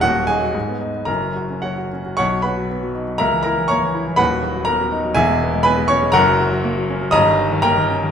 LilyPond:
<<
  \new Staff \with { instrumentName = "Grand piano" } { \time 2/4 \key b \major \tempo 4 = 120 <fis' fis''>8 <gis' gis''>4. | <ais' ais''>4 <fis' cis'' fis''>4 | <cis'' fis'' cis'''>8 <b' fis'' b''>4. | <ais' e'' ais''>8 <ais' ais''>8 <cis'' ais'' cis'''>4 |
<b' fis'' b''>4 <ais' ais''>4 | <gis' e'' gis''>4 <b' gis'' b''>8 <cis'' cis'''>8 | <ais' fis'' ais''>2 | <dis'' ais'' dis'''>4 <ais' g'' ais''>4 | }
  \new Staff \with { instrumentName = "Grand piano" } { \clef bass \time 2/4 \key b \major <dis,, dis,>16 fis16 dis'16 fis16 gis,16 b16 dis'16 b16 | <fis,, fis,>16 fis16 fis'16 cis'16 fis16 fis'16 cis'16 fis'16 | b,,16 fis16 fis'16 fis16 b16 fis16 dis'16 fis16 | cis,16 e16 e'16 e16 ais16 e16 e'16 e16 |
<dis,, dis,>16 fis16 fis'16 fis16 b16 fis16 dis'16 fis16 | <e,, e,>16 gis16 b16 gis16 b16 gis16 cis'16 gis16 | <fis,, fis,>16 fis16 fis'16 fis16 ais16 fis16 cis'16 fis16 | <g,, g,>16 dis16 dis'16 dis16 ais16 dis16 cis'16 dis16 | }
>>